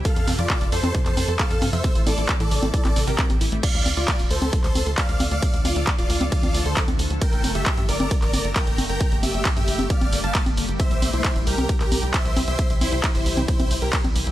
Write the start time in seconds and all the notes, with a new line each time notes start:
Already playing: C3
0.05 F3 A3 F4 A4 F5, kick, closed hi-hat
0.16 F2 A4, closed hi-hat
0.27 F2 C3, open hi-hat, high conga
0.39 F2 F3 F4 D5, closed hi-hat
0.50 C3, kick, clap, closed hi-hat
0.61 F1 A4, closed hi-hat
0.72 F2 A4 C5, open hi-hat
0.83 F2 A4, closed hi-hat, high conga
0.95 C3, kick, closed hi-hat
1.06 F2 F3 A4 C5, clap, closed hi-hat
1.17 F2 C3, open hi-hat, high conga
1.28 F2 A4, closed hi-hat
1.39 A4 F5, kick, clap, closed hi-hat
1.51 F2 A4, closed hi-hat
1.62 G2 C3, open hi-hat, high conga
1.73 F2 F3 C5 E5, closed hi-hat
1.84 C3 G3 E4 G4, kick, closed hi-hat
1.95 A1 E4, closed hi-hat
2.06 A1 E4 A4 D5, open hi-hat, high conga
2.18 A1 E4, closed hi-hat
2.29 C3, kick, clap, closed hi-hat
2.40 A2 E3 A4 D5, closed hi-hat
2.51 A1 C3, open hi-hat
2.63 A1 E4, closed hi-hat, high conga
2.74 E4 A4 D5, kick, closed hi-hat
2.85 A1 E4, clap, closed hi-hat, high conga
2.96 A1 C3, open hi-hat
3.07 A1 C3 G4 A#4, closed hi-hat
3.18 C4, kick, clap, closed hi-hat
3.30 A1 C4, closed hi-hat, high conga
3.41 A1 E4, open hi-hat
3.52 A1 A3, closed hi-hat
3.63 D3 F3 A3 F4 A4 D5 F5, kick, closed hi-hat, ride, crash
3.75 D2, closed hi-hat
3.86 D2, open hi-hat, high conga
3.97 D2 F4 D5, closed hi-hat
4.08 kick, clap, closed hi-hat, ride
4.19 D1, closed hi-hat
4.31 D2 A4 C5, open hi-hat
4.42 D2, closed hi-hat, high conga
4.53 kick, closed hi-hat, ride
4.64 D2 A4 C5, clap, closed hi-hat
4.75 D2, open hi-hat, high conga
4.86 D2, closed hi-hat
4.98 D5 F5, kick, clap, closed hi-hat, ride
5.09 D2, closed hi-hat
5.20 D2, open hi-hat, high conga
5.31 D2 D5 F5, closed hi-hat
5.42 E4, kick, closed hi-hat, ride
5.54 D2, closed hi-hat
5.65 D2 F4 D5, open hi-hat, high conga
5.76 D2, closed hi-hat
5.87 kick, clap, closed hi-hat, ride
5.98 D1 F4 D5, closed hi-hat
6.10 D2, open hi-hat
6.21 D2, closed hi-hat, high conga
6.32 F4 D5, kick, closed hi-hat, ride
6.43 D2, closed hi-hat, high conga
6.54 D2, open hi-hat
6.66 D2 A4 C5, closed hi-hat
6.77 kick, clap, closed hi-hat, ride
6.88 D2, closed hi-hat, high conga
6.99 D2, open hi-hat
7.10 D2, closed hi-hat
7.22 G3 A#3 G4 A#4 G5, kick, closed hi-hat, ride
7.33 G1, closed hi-hat
7.44 G1, open hi-hat, high conga
7.55 G1 G4 E5, closed hi-hat
7.66 kick, clap, closed hi-hat, ride
7.77 G2, closed hi-hat
7.89 G1 A#4 D5, open hi-hat
8.00 G1, closed hi-hat, high conga
8.11 kick, closed hi-hat, ride
8.22 G1 A#4 D5, clap, closed hi-hat
8.33 G1, open hi-hat, high conga
8.45 G1, closed hi-hat
8.56 A#4 G5, kick, clap, closed hi-hat, ride
8.67 G1, closed hi-hat
8.78 G1, open hi-hat, high conga
8.89 G1 A#4 G5, closed hi-hat
9.01 kick, closed hi-hat, ride
9.12 G1, closed hi-hat
9.23 G1 G4 E5, open hi-hat, high conga
9.34 G1, closed hi-hat
9.45 kick, clap, closed hi-hat, ride
9.56 G2 G4 E5, closed hi-hat
9.68 G1, open hi-hat
9.79 G1, closed hi-hat, high conga
9.90 D5 F5, kick, closed hi-hat, ride
10.01 G1, closed hi-hat, high conga
10.12 G1, open hi-hat
10.24 G1 F5 A5, closed hi-hat
10.35 kick, clap, closed hi-hat, ride
10.46 G1, closed hi-hat, high conga
10.57 G1, open hi-hat
10.68 G1, closed hi-hat
10.80 C3 E3 E4 C5 E5, kick, closed hi-hat, ride
10.91 C2, closed hi-hat
11.02 C2, open hi-hat, high conga
11.13 C2 E4 C5, closed hi-hat
11.24 kick, clap, closed hi-hat, ride
11.36 G1, closed hi-hat
11.47 C2 G4 A#4, open hi-hat
11.58 C2, closed hi-hat, high conga
11.69 kick, closed hi-hat, ride
11.80 C2 G4 A#4, clap, closed hi-hat
11.92 C2, open hi-hat, high conga
12.03 C2, closed hi-hat
12.14 C5 E5, kick, clap, closed hi-hat, ride
12.25 C2, closed hi-hat
12.36 C2, open hi-hat, high conga
12.48 C2 C5 E5, closed hi-hat
12.59 kick, closed hi-hat, ride
12.70 C2, closed hi-hat
12.81 C2 E4 C5, open hi-hat, high conga
12.92 C2, closed hi-hat
13.04 kick, clap, closed hi-hat, ride
13.15 G1 E4 C5, closed hi-hat
13.26 C2, open hi-hat
13.37 C2, closed hi-hat, high conga
13.48 E4 C5, kick, closed hi-hat, ride
13.60 C2, closed hi-hat, high conga
13.71 C2, open hi-hat
13.82 C2 G4 A#4, closed hi-hat
13.93 kick, clap, closed hi-hat, ride
14.04 C2, closed hi-hat, high conga
14.16 C2, open hi-hat
14.27 C2, closed hi-hat